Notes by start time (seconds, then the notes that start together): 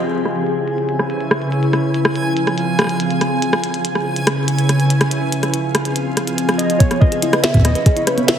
Already playing: G#4
0.04 C#3 G#5, closed hi-hat
0.25 cross-stick, closed hi-hat
0.36 E4, closed hi-hat
0.47 C#4, closed hi-hat
0.68 closed hi-hat
0.78 closed hi-hat
0.89 closed hi-hat
0.99 cross-stick
1.10 closed hi-hat
1.21 closed hi-hat
1.31 cross-stick, closed hi-hat
1.42 closed hi-hat
1.52 closed hi-hat
1.63 closed hi-hat
1.73 F3, cross-stick, closed hi-hat
1.94 closed hi-hat
2.05 cross-stick, closed hi-hat
2.12 F4, closed hi-hat
2.19 C4
2.37 closed hi-hat
2.47 G#4, cross-stick, closed hi-hat
2.58 closed hi-hat
2.79 cross-stick, closed hi-hat
2.82 cross-stick
2.84 cross-stick
2.87 cross-stick, closed hi-hat
3.00 closed hi-hat
3.11 closed hi-hat
3.21 cross-stick, closed hi-hat
3.42 C#3, closed hi-hat
3.53 cross-stick
3.62 C#4, closed hi-hat
3.74 E4, closed hi-hat
3.82 B4, closed hi-hat
3.95 cross-stick
4.16 closed hi-hat
4.27 cross-stick, closed hi-hat
4.48 closed hi-hat
4.59 closed hi-hat
4.69 cross-stick, closed hi-hat
4.80 closed hi-hat
4.90 closed hi-hat
5.01 cross-stick, closed hi-hat
5.11 F3, closed hi-hat
5.23 F4
5.32 G#4, closed hi-hat
5.43 cross-stick, closed hi-hat
5.53 C4, closed hi-hat
5.75 cross-stick, closed hi-hat
5.85 closed hi-hat
5.96 closed hi-hat
6.17 cross-stick, closed hi-hat
6.27 closed hi-hat
6.38 closed hi-hat
6.49 cross-stick, closed hi-hat
6.58 D#5, closed hi-hat
6.70 closed hi-hat
6.79 C#3 B3 C#5, kick, closed hi-hat
6.91 B3 C#4, cross-stick, closed hi-hat
7.00 B4 D#5, kick
7.08 G#4 B4, closed hi-hat
7.22 E4, closed hi-hat
7.33 B4, cross-stick, closed hi-hat
7.42 B3 E5, snare, closed hi-hat
7.51 B3 E4, kick, closed hi-hat
7.57 kick
7.60 kick
7.62 B3 D#5, kick, cross-stick, closed hi-hat
7.65 kick
7.67 kick
7.70 kick
7.73 B4, kick, closed hi-hat
7.86 G#4, kick, closed hi-hat
7.97 E4, closed hi-hat
8.07 B4, cross-stick, closed hi-hat
8.18 B3, closed hi-hat
8.27 B3 E5, snare, closed hi-hat